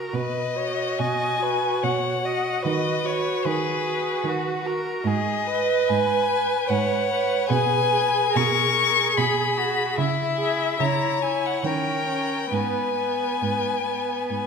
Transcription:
Already playing: viola F#4, violin A#4
0.14 cello B2, violin B4 D#5
0.56 viola F#4, violin C#5
0.99 cello B2, violin D#5 G#5
1.42 viola F#4, violin B4
1.83 cello B2, violin C#5 F#5
2.24 viola F#4, violin D#5
2.63 cello D#3, viola F#4, violin B4 D#5
3.06 viola F#4, violin C#5
3.45 cello D#3, violin G#4 B4
3.86 viola F#4
4.24 cello D#3, violin F#4
4.65 viola F#4, violin A#4
5.04 cello G#2, violin G#4 D#5
5.47 violin B4, viola B4
5.88 cello G#2, violin G#5
6.30 viola B4
6.69 cello G#2, violin C#5 F#5
7.11 viola B4
7.49 cello B2, viola G#4, violin B4 G#5
7.93 viola G#4
8.33 cello B2, violin A#4 C#6
8.78 viola G#4
9.17 cello B2, violin G#4 B5
9.58 violin F#4, viola G#4
9.98 cello C#3, violin E4 E5
10.38 viola G#4
10.80 cello C#3, viola E4, violin C#5 A#5
11.22 viola E4, violin G#5
11.46 violin F#5
11.64 cello D#3, viola C#4, violin A#4 G5
12.06 viola C#4
12.51 cello G#2, viola B3, violin B4 G#5
12.96 viola B3
13.42 cello G#2
13.85 viola B3
14.30 cello G#2, violin G#5

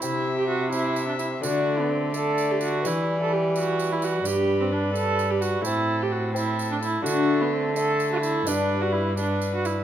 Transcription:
0.00 lute C3 C4 E4 G4, cello C3, bassoon C4, viola E4, violin E5, tambourine
0.38 viola G4
0.49 viola F#4
0.71 bassoon C4, viola E4, violin E5, tambourine
0.96 tambourine
1.07 viola D4
1.18 viola E4, tambourine
1.41 lute D3 A3 D4 F#4, cello D3, bassoon A3, viola F#4, tambourine
1.45 violin D5
1.80 viola B3
1.90 viola C4
2.13 bassoon A3, viola A4, violin D5, tambourine
2.38 tambourine
2.51 viola G4
2.61 viola F#4, tambourine
2.83 cello E3, lute E3 G3 B3, bassoon G3, viola E4, violin B4, tambourine
3.22 viola A4
3.33 viola G4
3.56 viola F#4, tambourine
3.79 tambourine
3.92 viola E4
4.02 viola F#4, tambourine
4.22 lute G2 B3 D4, cello G2, bassoon G3, viola G4, violin B4, tambourine
4.61 viola C4
4.72 viola D4
4.94 viola A4, tambourine
5.19 tambourine
5.30 viola G4
5.41 viola F#4, tambourine
5.61 lute A2 A3 C4, viola E4, tambourine
5.66 cello A2, bassoon C4, violin A4
6.02 viola G4
6.12 viola F#4
6.34 bassoon C4, viola E4, violin A4, tambourine
6.59 tambourine
6.71 viola D4
6.83 viola E4, tambourine
7.01 lute D3 A3 D4, viola F#4
7.05 cello D3, bassoon A3, violin A4, tambourine
7.41 viola B3
7.53 viola C4
7.76 bassoon A3, violin A4, viola A4, tambourine
8.00 tambourine
8.12 viola F#4
8.22 viola E4, tambourine
8.44 lute G2 B3 D4, cello G2, bassoon G3, viola D4, violin B4, tambourine
8.81 viola F#4
8.92 viola E4
9.17 bassoon G3, viola D4, violin B4, tambourine
9.41 tambourine
9.55 viola F#4
9.65 viola E4, tambourine

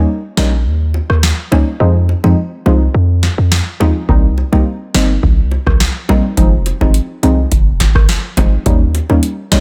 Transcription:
0.37 808-style bass A#1, synth stab G3 A#3 C#4 D#4, snare, low bongo
0.66 808-style bass D#2
0.94 high bongo
1.10 808-style bass D#2, cross-stick
1.23 snare
1.51 808-style bass C#2, synth stab G3 A#3 C#4 D#4, high bongo, low bongo
1.80 808-style bass F2, synth stab F3 G#3 C4 D#4
2.09 high bongo
2.24 808-style bass F2, synth stab F3 G#3 C4 D#4, high bongo
2.66 808-style bass C2, synth stab F3 G#3 C4 D#4, low bongo
2.94 808-style bass F2
3.23 snare, high bongo
3.38 808-style bass F2
3.52 snare
3.80 808-style bass D#2, synth stab F3 G#3 C4 D#4, high bongo, low bongo
4.08 808-style bass C2, synth stab G3 A#3 C4 D#4, kick
4.38 high bongo
4.52 808-style bass C2, synth stab G3 A#3 C4 D#4, high bongo
4.94 808-style bass G1, synth stab G3 A#3 C4 D#4, snare, low bongo
5.23 808-style bass C2, kick
5.51 high bongo
5.67 808-style bass C2, kick, cross-stick
5.80 snare
6.09 808-style bass A#1, synth stab G3 A#3 C4 D#4, high bongo, low bongo
6.37 808-style bass F1, synth stab F3 G#3 C4 D#4, kick, closed hi-hat
6.66 closed hi-hat, high bongo
6.81 808-style bass F1, synth stab F3 G#3 C4 D#4, kick, high bongo
6.94 closed hi-hat
7.23 808-style bass C2, synth stab F3 G#3 C4 D#4, closed hi-hat, low bongo
7.52 808-style bass F1, kick, closed hi-hat
7.80 kick, snare, closed hi-hat, high bongo
7.95 808-style bass G1, kick, cross-stick
8.09 snare, closed hi-hat
8.37 808-style bass F1, synth stab F3 G#3 C4 D#4, kick, closed hi-hat, high bongo, low bongo
8.66 808-style bass D#2, synth stab G3 A#3 C#4 D#4, kick, closed hi-hat
8.95 closed hi-hat, high bongo
9.09 808-style bass D#2, synth stab G3 A#3 C#4 D#4, high bongo
9.23 closed hi-hat
9.51 808-style bass A#1, synth stab G3 A#3 C#4 D#4, snare, closed hi-hat, low bongo

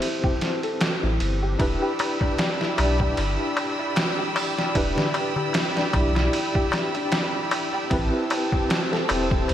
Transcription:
Already playing: tine electric piano C4 E4 G4 B4 C5, felt piano E4 G4 A4
0.02 ride
0.24 felt piano G4, kick
0.41 snare, ride
0.63 felt piano A4, ride
0.81 snare, ride
1.03 sub bass A1, felt piano E4
1.20 sub bass G1, ride
1.42 felt piano G4
1.59 sub bass E1, tine electric piano D4 E4 G4 B4, violin section D5 G5 B5 E6, kick, ride, darbuka tek
1.82 felt piano G4, darbuka tek
1.99 ride, darbuka tek
2.21 felt piano D4, kick, darbuka tek
2.38 snare, ride, darbuka tek
2.61 felt piano E4, snare, darbuka tek
2.77 sub bass B1, tine electric piano D4 E4 G4 D5, ride, darbuka tek
3.00 felt piano G4, kick, darbuka tek
3.17 sub bass G1, ride, darbuka tek
3.39 felt piano D4, darbuka tek
3.57 ride, darbuka tek
3.79 felt piano E4, darbuka tek
3.96 snare, ride, darbuka tek
4.18 felt piano G4, darbuka tek
4.36 open hi-hat, darbuka tek
4.58 felt piano D4, snare, darbuka tek
4.75 sub bass E1, tine electric piano D4 E4 G4 B4, kick, ride, darbuka tek
4.97 felt piano E4, snare, darbuka tek, darbuka dum
5.14 ride, darbuka tek
5.36 felt piano G4, darbuka tek, darbuka dum
5.53 snare, ride, darbuka tek
5.76 felt piano D4, snare, darbuka tek
5.93 sub bass B1, tine electric piano D4 E4 G4 D5, kick, ride, darbuka tek
6.15 felt piano E4, snare, darbuka tek
6.33 ride, darbuka tek
6.55 felt piano G4, kick, darbuka tek
6.72 snare, ride, darbuka tek
6.94 felt piano D4, ride, darbuka tek
7.12 snare, ride, darbuka tek
7.33 felt piano E4, darbuka tek
7.51 ride, darbuka tek
7.73 felt piano G4, darbuka tek
7.90 sub bass A1, tine electric piano C4 E4 G4 B4, violin section C4 A5, kick, ride, darbuka tek
8.13 felt piano E4, darbuka tek
8.30 ride, darbuka tek
8.52 felt piano G4, kick, darbuka tek
8.69 snare, ride, darbuka tek
8.92 felt piano A4, snare, darbuka tek
9.08 sub bass E1, tine electric piano C4 E4 G4 C5, ride, darbuka tek
9.30 felt piano E4, kick, darbuka tek
9.48 sub bass C2, ride, darbuka tek

